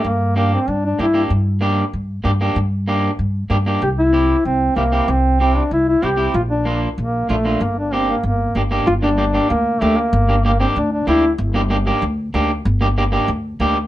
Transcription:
X:1
M:4/4
L:1/16
Q:1/4=190
K:Gdor
V:1 name="Clean electric guitar"
z4 [B,DG]2 z6 [B,DG]2 [B,DG]2 | z4 [B,DG]2 z6 [B,DG]2 [B,DG]2 | z4 [B,DG]2 z6 [B,DG]2 [B,DG]2 | z4 [CEG]2 z6 [CEG]2 [CEG]2 |
z4 [CEG]2 z6 [CEG]2 [CEG]2 | z4 [B,DF]2 z6 [B,DF]2 [B,DF]2 | z4 [B,DG]2 z6 [B,DG]2 [B,DG]2 | z2 [B,DG]2 [B,DG]2 [B,DG]2 z4 [B,DG]2 z2 |
z2 [B,DG]2 [B,DG]2 [B,DG]2 z4 [B,DG]2 z2 | z2 [B,DG]2 [B,DG]2 [B,DG]2 z4 [B,DG]2 z2 | z2 [B,DG]2 [B,DG]2 [B,DG]2 z4 [B,DG]2 z2 |]
V:2 name="Duduk"
B,4 B,2 C2 D2 D2 E3 z | z16 | z16 | G2 E6 C4 B,4 |
C4 C2 D2 E2 E2 G3 z | F2 D4 z2 B,4 A,4 | B,2 D2 C2 B,2 B,4 z4 | F2 D6 B,4 A,2 B,2- |
B,4 B,2 C2 D2 D2 E3 z | z16 | z16 |]
V:3 name="Upright bass" clef=bass
G,,8 G,,4 G,,4 | G,,8 G,,4 G,,4 | G,,8 G,,4 G,,4 | C,,8 C,,4 C,,4 |
C,,8 C,,4 C,,4 | B,,,8 B,,,4 B,,,4 | G,,,8 G,,,4 G,,,4 | G,,,8 D,,4 D,,4 |
G,,,8 D,,4 D,,4 | G,,,8 D,,4 D,,4 | G,,,8 D,,4 D,,4 |]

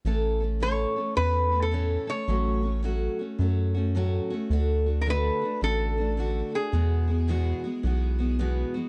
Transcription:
X:1
M:4/4
L:1/16
Q:"Swing" 1/4=108
K:A
V:1 name="Resonator guitar played with a steel bar"
z4 c4 B3 A3 c2- | c4 z12 | z3 z/2 _B/2 =B4 A6 G2- | G12 z4 |]
V:2 name="Steel-string acoustic guitar"
[A,,E,A,CA]2 [A,CA]2 [A,,E,A,CA]2 [A,CA]2 [E,A,CA]2 [A,CA]2 [A,,E,A,CA]2 [A,CA]2 | [A,,F,A,CF]2 [A,CF]2 [A,,F,A,CF]2 [A,CF]2 [F,A,CF]2 [A,CF]2 [A,,F,A,CF]2 [A,CF]2 | [D,A,DF]2 [A,DF]2 [D,A,DF]2 [A,DF]2 [D,A,DF]2 [A,DF]2 [D,A,DF]2 [A,DF]2 | [E,,B,,E,G,B,F]2 [E,G,B,F]2 [E,,B,,E,G,B,F]2 [E,G,B,F]2 [E,G,B,F]2 [E,G,B,F]2 [E,,B,,E,G,B,F]2 [E,G,B,F]2 |]
V:3 name="Analog synth bass" clef=bass
A,,,8 E,,8 | A,,,8 F,,8 | D,,8 A,,,8 | E,,8 B,,,8 |]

